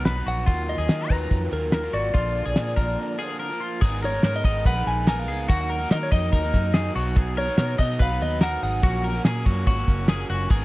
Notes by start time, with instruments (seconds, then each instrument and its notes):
Already playing: overdriven electric guitar B2 F#3 B3 D#4
0.05 fingered electric bass B1, clean electric guitar B4, snare, closed hi-hat
0.15 overdriven electric guitar F#3 B3 D#4
0.26 fingered electric bass A#1, clean electric guitar F#4, lead electric guitar F#5, open hi-hat
0.46 fingered electric bass D#2, overdriven electric guitar D#3 F#3 A#3 F4, clean electric guitar F4, kick, closed hi-hat
0.69 lead electric guitar D#5, closed hi-hat
0.78 fingered electric bass D#2, clean electric guitar G#4
0.88 overdriven electric guitar D#3 F#3 A#3 F4, fingered electric bass D#3, snare, closed hi-hat
1.09 fingered electric bass D#2, overdriven electric guitar D#3 F#3 F4, lead electric guitar B4, clean electric guitar A#5, kick, closed hi-hat
1.31 fingered electric bass F2, kick, closed hi-hat
1.51 fingered electric bass D#2, overdriven electric guitar D#3 F#3 A#3 F4, clean electric guitar G#4, lead electric guitar A#4, closed hi-hat
1.72 clean electric guitar A#4, snare, closed hi-hat
1.82 overdriven electric guitar F#3 A#3 F4
1.93 fingered electric bass G#1, clean electric guitar F#4, lead electric guitar D5, open hi-hat
2.13 fingered electric bass A#1, overdriven electric guitar D3 F3 A#3 F4, clean electric guitar F4, kick, closed hi-hat
2.36 closed hi-hat
2.46 fingered electric bass A#1, clean electric guitar G#4
2.56 fingered electric bass A#2, overdriven electric guitar D3 F3 A#3 F4, snare, closed hi-hat
2.76 fingered electric bass A#1, overdriven electric guitar A#2 D3 F3 A#3 F4, clean electric guitar A#4, kick, closed hi-hat
3.18 overdriven electric guitar D3 F3 A#3 F4, clean electric guitar G#4
3.40 clean electric guitar A#4
3.50 overdriven electric guitar F3 A#3 F4
3.60 clean electric guitar F4
3.81 fingered electric bass G#1, overdriven electric guitar G#3 B3 D#4 A#4, clean electric guitar G#4, kick, crash
4.03 clean electric guitar A#4, lead electric guitar C#5, hi-hat pedal, open hi-hat
4.13 overdriven electric guitar G#3 B3 D#4 A#4
4.23 fingered electric bass G#2, clean electric guitar A#4, snare, clap, hi-hat pedal, open hi-hat
4.36 lead electric guitar D#5
4.44 fingered electric bass G#1, overdriven electric guitar G#2 D#3 G#3 B3 D#4 A#4, clean electric guitar D#5, kick, hi-hat pedal, open hi-hat
4.65 fingered electric bass A#1, clean electric guitar B4, lead electric guitar F#5, kick, clap, hi-hat pedal, open hi-hat
4.76 overdriven electric guitar G#3 B3 D#4 A#4
4.87 fingered electric bass A#1, lead electric guitar G#5, snare, hi-hat pedal, open hi-hat
5.07 overdriven electric guitar G#3 B3 D#4 A#4, clean electric guitar A#4, lead electric guitar G#5, snare, clap, hi-hat pedal, open hi-hat
5.19 lead electric guitar F5
5.28 fingered electric bass C#2, clean electric guitar G#4, hi-hat pedal, open hi-hat
5.48 fingered electric bass D#2, overdriven electric guitar D#3 F#3 A#3 D#4, clean electric guitar F#4, lead electric guitar F#5, kick, hi-hat pedal, open hi-hat
5.61 lead electric guitar F#5
5.70 clean electric guitar A#4, hi-hat pedal, open hi-hat
5.80 overdriven electric guitar F#3 A#3 D#4
5.91 fingered electric bass D#3, clean electric guitar A#4, lead electric guitar D#5, snare, clap, hi-hat pedal, open hi-hat
6.03 lead electric guitar C#5
6.11 fingered electric bass F2, overdriven electric guitar D#3 F#3 A#3 D#4, clean electric guitar D#5, lead electric guitar D#5, kick, hi-hat pedal, open hi-hat
6.33 fingered electric bass D#2, clean electric guitar A#4, kick, clap, hi-hat pedal, open hi-hat
6.43 overdriven electric guitar F#3 A#3 D#4
6.54 fingered electric bass F#2, kick, snare, hi-hat pedal, open hi-hat
6.74 overdriven electric guitar D#3 F#3 A#3 D#4, clean electric guitar G#4, snare, clap, hi-hat pedal, open hi-hat
6.94 fingered electric bass B1, overdriven electric guitar B2 F#3 B3 D#4, clean electric guitar F#4, hi-hat pedal, open hi-hat
7.16 clean electric guitar G#4, kick, hi-hat pedal, open hi-hat
7.37 clean electric guitar A#4, lead electric guitar C#5, hi-hat pedal, open hi-hat
7.47 overdriven electric guitar F#3 B3 D#4
7.58 fingered electric bass B2, clean electric guitar A#4, snare, clap, hi-hat pedal, open hi-hat
7.78 overdriven electric guitar B2 F#3 B3 D#4, fingered electric bass B2, clean electric guitar D#5, lead electric guitar D#5, kick, hi-hat pedal, open hi-hat
7.99 fingered electric bass B1, clean electric guitar B4, lead electric guitar F5, kick, clap, hi-hat pedal, open hi-hat
8.09 overdriven electric guitar F#3 B3 D#4
8.21 fingered electric bass D#2, lead electric guitar D#5, hi-hat pedal, open hi-hat
8.40 overdriven electric guitar B2 F#3 B3 D#4, clean electric guitar A#4, lead electric guitar F#5, snare, clap, hi-hat pedal, open hi-hat
8.62 fingered electric bass G#1, clean electric guitar G#4, lead electric guitar F#5, hi-hat pedal, open hi-hat
8.82 fingered electric bass A#1, overdriven electric guitar A#2 F#3 A#3 C#4, clean electric guitar F#4, kick, hi-hat pedal, open hi-hat
9.04 clean electric guitar A#4, hi-hat pedal, open hi-hat
9.14 overdriven electric guitar F#3 A#3 C#4
9.25 fingered electric bass A#2, clean electric guitar G#4, snare, clap, hi-hat pedal, open hi-hat
9.45 fingered electric bass F#2, overdriven electric guitar A#2 F#3 A#3 C#4, clean electric guitar F#4, kick, hi-hat pedal, open hi-hat
9.67 fingered electric bass G#1, clean electric guitar F#4, kick, clap, hi-hat pedal, open hi-hat
9.76 overdriven electric guitar F#3 A#3 C#4
9.88 fingered electric bass F#1, kick, hi-hat pedal, open hi-hat
10.07 overdriven electric guitar A#2 F#3 A#3 C#4, clean electric guitar G#4, snare, clap, hi-hat pedal, open hi-hat
10.29 fingered electric bass F#1, clean electric guitar F#4, hi-hat pedal, open hi-hat
10.49 fingered electric bass G#1, overdriven electric guitar G#3 B3 D#4 A#4, clean electric guitar G#4, kick, hi-hat pedal, open hi-hat